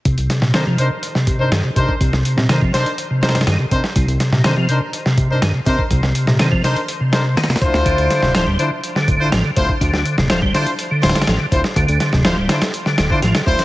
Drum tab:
HH |x-x-x---x---x---x---x---x---x---|x---x---x---x-x-x---xxxxx---x---|x-x-x---x---x---x---x---x---x---|x---x---x---x-x-x---x---xxxxx---|
SD |----o-o-o---------o-----o-------|--o---o-o---o-------ooooo-----o-|----o-o-o---------o-----o-------|--o---o-o---o-------o---oooo--o-|
BD |o-------------------o-------o-o-|o---------o-----------------o---|o-------------------o-------o-o-|o---------o-----------------o---|

HH |x-x-x---x---x---x---x---x---x---|x---x---x---x-x-x---xxxxx---x---|x-x-x---x---x-x-x---x---x-x---x-|
SD |----o-o-o---------o-----o-------|--o---o-o---o-------ooooo-----o-|----o-o-o---o-o---o-o---o-o---o-|
BD |o-------------------o-------o-o-|o---------o-----------------o---|o---------------------o-----o---|